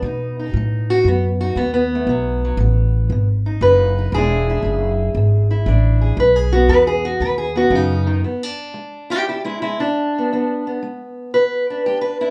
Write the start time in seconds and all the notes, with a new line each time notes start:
Already playing: B3 B4
0.02 B2 D#4
0.39 D#4
0.53 A2 F#3
0.90 F#4
1.04 F#2 B3
1.41 D#4 F#4
1.56 D#2 F#3 B3
1.74 B3
1.95 A3
2.07 B1 B2 F#3
2.45 F#3
2.57 A1 F#3
3.10 G#1 B2
3.46 D#4
3.61 F#1 F#3 B4
3.99 D#4
4.12 E1 E2 G#3 D4 G#4
4.17 E4
4.50 E4
4.62 F#1 G#3
5.15 G#1 E2
5.51 E4
5.66 A1 G#3 D4
6.01 G#4
6.17 B1 B2 B4
6.36 G#4
6.53 B3 F#4
6.68 E2 F#3 B4
6.87 G#4
7.05 F#4
7.20 D#2 B2 B4
7.38 G#4
7.56 B3 F#4
7.70 F#2 C#3
7.75 D#4
8.07 D#3
8.24 E2 B3
8.43 D4
8.74 G#3
9.10 E4 G4
9.28 E2 E4 G4
9.45 G#3 E4
9.62 G#3 E4
9.80 G#3 D4
10.18 B3
10.32 E2 B3
10.67 B3
10.83 G#3
11.34 E2 B4
11.70 D4
11.86 G#3 G4
12.01 B4
12.21 D4 E4